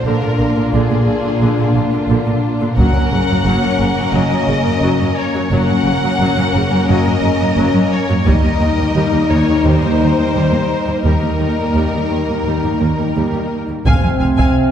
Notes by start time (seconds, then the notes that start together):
0.05 A#1 A#2 D3 A#3 D4 F4 A#4
0.22 A#2 D3
0.39 A#1 A#2 D3
0.56 A#2 D3
0.73 A#1 A#2 D3 G#4
0.91 A#2 D3
1.05 A#1 A#2 D3
1.23 A#2 D3
1.41 A#1 A#2 D3
1.58 A#2 D3
1.75 A#1 A#2 D3
1.93 A#2 D3
2.09 A#1 A#2 D3
2.27 A#2 D3
2.61 A#2 D3
2.77 F#1 F#2 F#3 A#3 C#4 A#4 F#5, taiko
2.95 F#2 F#3
3.11 F#1 F#2 C#3
3.29 F#2 F#3
3.46 F#1 F#2 F#3
3.63 F#2 F#3
3.80 F#1 F#2 C#3
3.97 F#2 F#3
4.14 F#1 F#2 F#3 D#5
4.31 F#2 F#3
4.47 F#1 F#2 C#3
4.65 F#2 F#3
4.83 F#1 F#2 F#3
4.99 F#2 F#3
5.19 C#5
5.34 F#2 F#3
5.52 F#1 F#2 F#3 A#3 C#4 A#4 F#5
5.69 F#2 F#3
5.86 F#1 F#2 C#3
6.03 F#2 F#3
6.21 F#1 F#2 F#3
6.37 F#2 F#3
6.55 F#1 F#2 C#3
6.72 F#2 F#3
6.89 F#1 F#2 F#3 D#5
7.06 F#2 F#3
7.23 F#1 F#2 C#3
7.40 F#2 F#3
7.57 F#1 F#2 F#3
7.74 F#2 F#3
7.92 C#5
8.09 F#2 F#3
8.25 D#2 G3 A#3 D#4 A#4 D#5, taiko
8.43 D#2 G3
8.61 D#2 D#3
8.78 D#2 G3
8.95 D#2 G3
9.12 D#2 G3
9.29 D#2 D#3 C#5
9.48 D#2 G3
9.65 D#2 G3 C5
9.82 D#2 G3
9.99 D#2 D#3
10.17 D#2 G3
10.34 D#2 G3
10.51 D#2 G3
10.87 D#2 G3
11.03 D#2 G3 A#3 D#4 A#4
11.23 D#2 G3
11.40 D#2 D#3
11.58 D#2 G3
11.75 D#2 G3
11.93 D#2 G3
12.10 D#2 D#3
12.28 D#2 G3
12.45 D#2 G3
12.63 D#2 G3
12.80 D#2 D#3
12.98 D#2 G3
13.16 D#2 G3
13.33 D#2 G3
13.68 D#2 G3
13.85 F1 F2 C3 C4 F5 G#5, taiko
14.03 F2 F5 G#5
14.20 F1 F2 F5 G#5
14.37 F2 F5 G#5, taiko